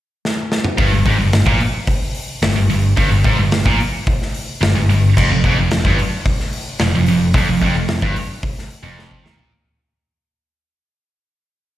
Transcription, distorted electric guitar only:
0.78 0.91 G2 medium
0.93 1.06 G2 medium
1.06 1.18 G#2 loud
1.18 1.40 G2 medium
1.47 1.59 A#2 loud
2.43 2.54 G2 medium
2.56 2.68 G2 medium
2.70 2.91 G2 medium
2.97 3.09 G2 loud
3.11 3.24 G2 medium
3.25 3.37 G#2 medium
3.40 3.60 G2 medium
3.67 3.79 A#2 medium
4.61 4.74 G2 medium
4.76 4.89 G2 medium
4.90 5.11 G2 medium
5.18 5.29 F2 medium
5.31 5.44 F2 medium
5.45 5.57 F2 loud
5.58 5.79 F2 medium
5.86 5.98 G2 loud
6.81 6.94 F2 medium
6.95 7.07 F2 medium
7.08 7.29 F2 medium
7.35 7.47 F2 medium
7.49 7.61 F2 medium
7.62 7.75 F2 loud
7.76 7.97 F2 medium
8.03 8.15 G2 loud
8.83 9.24 F2 medium
9.24 9.37 D#3 medium
9.37 9.51 A#2 loud

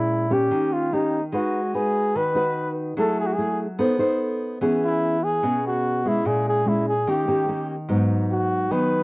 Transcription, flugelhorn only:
0.00 0.34 E4 medium
0.33 0.74 G4 medium
0.73 0.95 F4 medium
0.93 1.23 D#4 medium
1.34 1.76 F#4 medium
1.75 2.18 G#4 medium
2.16 2.71 B4 medium
2.99 3.17 A4 medium
3.20 3.28 G#4 medium
3.26 3.35 F#4 medium
3.33 3.59 G#4 medium
4.85 5.25 E4 medium
5.24 5.64 G#4 loud
5.67 6.09 F#4 medium
6.08 6.28 E4 medium
6.27 6.46 G#4 medium
6.48 6.69 G#4 medium
6.68 6.87 E4 medium
6.88 7.11 G#4 medium
7.09 7.70 G4 medium
8.31 8.73 F#4 medium
8.72 9.03 B4 loud

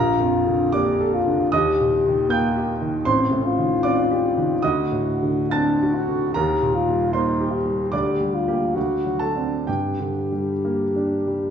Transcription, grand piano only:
0.00 1.49 A#1 medium
0.00 0.69 A#4 medium
0.00 0.72 A#5 medium
0.20 0.63 F2 soft
0.47 0.90 D3 soft
0.72 1.16 A#3 soft
0.72 1.49 D5 medium
0.72 1.52 D6 medium
1.01 1.42 A4 soft
1.26 1.52 D3 soft
1.52 3.02 D#2 medium
1.52 2.26 D#5 medium
1.52 2.30 D#6 medium
1.80 2.21 A#2 soft
2.06 2.46 D#3 soft
2.30 2.71 A#3 soft
2.30 3.03 G5 medium
2.30 3.06 G6 medium
2.57 2.97 G4 soft
2.81 3.06 D#3 soft
3.05 4.58 A1 medium
3.05 3.80 C5 medium
3.05 3.83 C6 medium
3.31 3.73 A2 soft
3.58 4.00 D#3 soft
3.83 4.26 C4 soft
3.83 4.58 D5 medium
3.83 4.62 D6 medium
4.11 4.52 G4 soft
4.37 4.63 D#3 soft
4.62 6.31 D2 medium
4.62 5.48 D#5 medium
4.62 5.51 D#6 medium
4.92 5.40 A2 soft
5.23 5.69 D3 soft
5.51 5.97 C4 soft
5.51 6.31 A5 medium
5.51 6.35 A6 medium
5.82 6.25 F#4 soft
6.09 6.35 D3 soft
6.34 7.89 D#2 medium
6.34 7.11 A#4 medium
6.34 7.14 A#5 medium
6.62 7.04 A#2 soft
6.89 7.30 G3 soft
7.13 7.55 A#3 soft
7.13 7.89 C5 soft
7.13 7.92 C6 medium
7.41 7.82 G4 soft
7.66 7.92 G3 soft
7.92 8.74 D2 soft
7.92 9.17 D5 medium
7.92 9.20 D6 medium
8.21 8.65 G3 soft
8.48 8.73 A#3 soft
8.48 8.73 G4 soft
8.77 9.65 D2 soft
9.05 9.55 F#3 soft
9.19 9.64 A4 soft
9.19 9.67 A5 medium
9.36 9.64 C4 soft
9.36 9.64 D4 soft
9.67 11.50 G2 soft
9.67 11.50 G4 soft
9.67 11.50 G5 medium
10.00 10.51 D3 soft
10.32 10.83 G3 soft
10.65 11.15 A#3 soft
10.96 11.46 D4 soft
11.27 11.50 G3 soft

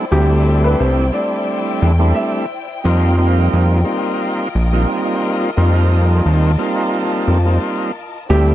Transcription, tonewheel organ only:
0.11 1.06 G3 medium
0.11 1.06 A3 medium
0.11 1.06 C4 medium
0.11 1.06 D4 medium
0.11 1.07 E4 loud
1.12 1.92 G3 loud
1.12 1.92 A3 medium
1.12 1.92 C4 medium
1.12 1.92 D4 medium
1.12 1.93 E4 loud
1.99 2.45 G3 medium
1.99 2.46 A3 medium
1.99 2.46 C4 medium
1.99 2.46 D4 medium
1.99 2.46 E4 loud
2.84 3.15 G3 medium
2.84 3.16 A#3 medium
2.84 3.16 C4 medium
2.84 3.16 D#4 medium
2.84 3.16 F4 loud
3.17 3.81 G3 loud
3.17 3.81 A#3 medium
3.17 3.81 C4 medium
3.17 3.81 D#4 medium
3.17 3.81 F4 loud
3.83 4.48 G3 loud
3.83 4.48 A#3 medium
3.83 4.48 C4 medium
3.83 4.49 D#4 medium
3.83 4.49 F4 loud
4.72 5.50 G3 medium
4.72 5.50 A#3 medium
4.72 5.50 C4 medium
4.72 5.51 D#4 medium
4.72 5.51 F4 loud
5.56 6.51 G3 medium
5.56 6.52 A#3 medium
5.56 6.52 C4 medium
5.56 6.52 D#4 medium
5.56 6.52 F4 loud
6.58 7.38 G3 medium
6.58 7.38 A#3 medium
6.58 7.38 C4 medium
6.58 7.38 D#4 medium
6.58 7.38 F4 loud
7.45 7.91 G3 loud
7.45 7.91 A#3 medium
7.45 7.92 C4 medium
7.45 7.92 D#4 medium
7.45 7.92 F4 loud
8.29 8.55 G3 loud
8.29 8.55 A3 medium
8.29 8.55 C4 medium
8.29 8.55 D4 medium
8.29 8.55 E4 loud

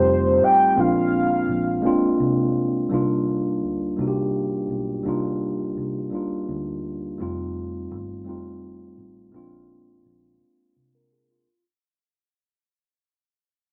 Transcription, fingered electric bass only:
0.00 0.42 F1 loud
0.42 0.73 A1 medium
0.77 1.44 A#1 loud
1.49 1.80 A#1 medium
1.85 muted fingered electric bass stroke medium
2.20 2.86 C2 medium
2.92 3.63 C2 medium
3.63 3.94 D2 medium
3.98 4.65 C2 medium
4.70 5.01 B1 medium
5.05 5.72 C2 medium
5.77 6.08 C2 medium
6.13 muted fingered electric bass stroke soft
6.49 7.15 D2 medium
7.20 7.87 F1 medium
7.91 8.27 G1 medium
8.27 8.93 F1 medium
8.98 9.29 A1 medium
9.34 10.01 A#1 medium
10.05 10.37 A#1 medium
10.76 11.43 C2 medium

